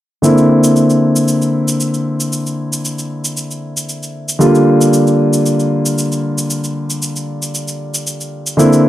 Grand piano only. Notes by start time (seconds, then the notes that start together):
0.22 D3 A#3 C4 E4
4.39 D3 G3 A#3 F4
8.57 D3 A#3 C4 E4